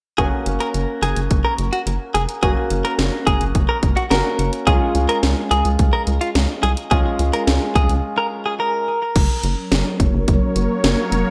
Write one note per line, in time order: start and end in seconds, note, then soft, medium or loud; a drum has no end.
0.18 0.30 F#1 loud
0.18 2.39 A#3 medium
0.18 2.39 C#4 medium
0.18 2.39 F#4 medium
0.18 0.27 G#4 medium
0.18 kick loud
0.18 closed hi-hat medium
0.46 0.58 F#1 loud
0.46 closed hi-hat medium
0.60 0.69 A#4 medium
0.60 closed hi-hat medium
0.74 0.86 F#1 medium
0.74 closed hi-hat medium
1.02 1.14 F#1 medium
1.02 1.20 G#4 medium
1.02 closed hi-hat medium
1.16 1.28 F#1 medium
1.16 closed hi-hat medium
1.31 1.42 F#1 loud
1.31 kick medium
1.31 closed hi-hat medium
1.45 1.53 A#4 medium
1.58 1.70 F#1 loud
1.58 closed hi-hat medium
1.73 1.81 F#4 medium
1.73 closed hi-hat medium
1.87 1.98 F#1 medium
1.87 closed hi-hat medium
2.14 2.26 F1 medium
2.14 2.23 G#4 medium
2.14 closed hi-hat medium
2.29 closed hi-hat medium
2.43 2.55 F#1 loud
2.43 4.08 A#3 medium
2.43 4.08 C#4 medium
2.43 4.08 F#4 medium
2.43 2.51 G#4 medium
2.43 kick loud
2.43 closed hi-hat medium
2.70 2.83 F#1 loud
2.70 closed hi-hat medium
2.85 2.93 A#4 medium
2.85 closed hi-hat medium
2.99 3.10 F#1 loud
2.99 snare loud
2.99 closed hi-hat medium
3.27 3.39 F#1 loud
3.27 3.44 G#4 medium
3.27 kick medium
3.27 closed hi-hat medium
3.40 3.52 F#1 medium
3.40 closed hi-hat medium
3.55 3.67 F#1 loud
3.55 kick medium
3.55 closed hi-hat medium
3.69 3.77 A#4 medium
3.83 3.95 F#1 loud
3.83 kick medium
3.83 closed hi-hat medium
3.97 4.05 F#4 medium
3.97 closed hi-hat medium
4.10 4.23 F#1 medium
4.10 4.67 A#3 medium
4.10 4.66 C#4 soft
4.10 4.67 F#4 medium
4.10 4.50 A#4 medium
4.10 snare loud
4.10 closed hi-hat medium
4.39 4.51 F#1 loud
4.39 closed hi-hat medium
4.53 closed hi-hat medium
4.67 4.79 C#2 loud
4.67 6.87 G#3 medium
4.67 6.87 C#4 medium
4.67 6.87 F4 medium
4.67 4.75 G#4 loud
4.67 kick loud
4.67 closed hi-hat medium
4.95 5.07 C#2 medium
4.95 closed hi-hat medium
5.09 5.17 A#4 medium
5.09 closed hi-hat medium
5.23 5.35 C#2 loud
5.23 snare loud
5.23 closed hi-hat medium
5.51 5.63 C#2 medium
5.51 5.68 G#4 medium
5.51 closed hi-hat medium
5.65 5.77 C#2 medium
5.65 closed hi-hat medium
5.79 5.91 C#2 loud
5.79 kick medium
5.79 closed hi-hat medium
5.93 6.01 A#4 medium
6.07 6.19 C#2 loud
6.07 closed hi-hat medium
6.21 6.30 F4 medium
6.21 closed hi-hat medium
6.35 6.47 C#2 loud
6.35 snare loud
6.35 closed hi-hat medium
6.63 6.75 C2 medium
6.63 6.72 G#4 medium
6.63 closed hi-hat medium
6.77 closed hi-hat medium
6.91 7.03 C#2 loud
6.91 8.84 G#3 medium
6.91 8.84 C#4 medium
6.91 8.84 F4 medium
6.91 7.00 G#4 medium
6.91 kick loud
6.91 closed hi-hat medium
7.19 7.31 C#2 loud
7.19 closed hi-hat medium
7.33 7.42 A#4 medium
7.33 closed hi-hat medium
7.47 7.59 C#2 loud
7.47 snare loud
7.47 closed hi-hat medium
7.75 7.87 C#2 loud
7.75 7.92 G#4 medium
7.75 kick medium
7.75 closed hi-hat medium
7.89 8.01 C#2 loud
7.89 closed hi-hat medium
8.18 8.26 A#4 medium
8.46 8.54 G#4 medium
8.60 8.99 A#4 medium
9.16 9.27 F#1 loud
9.16 11.30 F#3 medium
9.16 11.30 A#3 medium
9.16 11.30 C#4 medium
9.16 11.30 A#4 medium
9.16 11.30 C#5 medium
9.16 kick loud
9.16 closed hi-hat medium
9.16 crash medium
9.43 9.55 F#1 loud
9.43 closed hi-hat medium
9.72 9.83 F#1 loud
9.72 snare loud
9.72 closed hi-hat medium
10.00 10.12 F#1 medium
10.00 kick medium
10.00 closed hi-hat medium
10.13 10.25 F#1 loud
10.28 10.40 F#1 loud
10.28 kick medium
10.28 closed hi-hat medium
10.56 10.68 F#1 loud
10.56 closed hi-hat medium
10.84 10.96 F#1 medium
10.84 snare loud
10.84 closed hi-hat medium
11.12 11.24 F1 loud
11.12 closed hi-hat medium